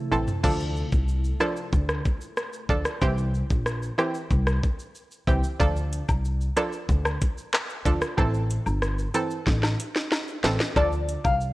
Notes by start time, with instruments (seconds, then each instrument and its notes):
Already playing: ambient pad C3 A3 E4 A4
0.11 upright bass A1, synth pluck E3 C4 A4, mid tom, shaker
0.28 floor tom, shaker
0.43 upright bass D2, synth pluck F3 D4 A4, kick, crash, shaker
0.60 shaker
0.76 shaker
0.92 upright bass C2, kick, shaker
1.08 shaker
1.25 shaker
1.40 synth pluck F3 D4 A4, cross-stick, shaker
1.57 shaker
1.73 upright bass D2, kick, shaker
1.89 cross-stick, shaker
2.05 kick, shaker
2.21 shaker
2.37 cross-stick, shaker
2.53 shaker
2.69 upright bass D2, synth pluck F3 D4 A4, kick, shaker
2.85 cross-stick, shaker
3.02 upright bass C2, synth pluck E3 C4 G4, kick, shaker
3.18 shaker
3.34 shaker
3.50 upright bass A#1, kick, shaker
3.66 cross-stick, shaker
3.83 shaker
3.98 synth pluck E3 C4 G4, cross-stick, shaker
4.15 shaker
4.31 upright bass C2, kick, shaker
4.47 cross-stick, shaker
4.63 kick, shaker
4.79 shaker
4.95 shaker
5.11 shaker
5.27 upright bass C2, synth pluck E3 C4 G4, kick, shaker
5.44 shaker
5.59 upright bass D2, synth pluck F3 D4 A4, kick, high woodblock, shaker
5.76 shaker
5.92 closed hi-hat, cabasa, shaker
6.08 upright bass C2, kick, high woodblock, shaker
6.24 shaker
6.41 shaker
6.56 synth pluck F3 D4 A4, cross-stick, closed hi-hat, cabasa, high woodblock, shaker
6.73 shaker
6.89 upright bass D2, kick, shaker
7.05 cross-stick, high woodblock, shaker
7.21 kick, closed hi-hat, cabasa, shaker
7.38 shaker
7.53 cross-stick, clap, high woodblock, shaker
7.70 shaker
7.85 upright bass D2, synth pluck F3 D4 A4, kick, closed hi-hat, cabasa, shaker
8.02 cross-stick, shaker
8.17 upright bass A1, synth pluck E3 C4 A4, kick, high woodblock, shaker
8.34 shaker
8.50 closed hi-hat, cabasa, shaker
8.66 upright bass G1, high woodblock, shaker
8.82 cross-stick, shaker
8.99 shaker
9.15 synth pluck E3 C4 A4, closed hi-hat, cabasa, high woodblock, shaker
9.31 shaker
9.47 upright bass A1, kick, snare, shaker
9.63 snare, high woodblock, shaker
9.79 closed hi-hat, cabasa, shaker
9.96 snare, shaker
10.12 snare, high woodblock, shaker
10.28 shaker
10.44 upright bass A1, synth pluck E3 C4 A4, snare, closed hi-hat, cabasa, shaker
10.60 snare, shaker
10.76 upright bass D2, synth pluck F3 D4 A4, soft synth lead D5, kick, high woodblock, shaker
10.92 shaker
11.08 closed hi-hat, cabasa, shaker
11.24 upright bass C2, soft synth lead F5, kick, high woodblock, shaker
11.41 shaker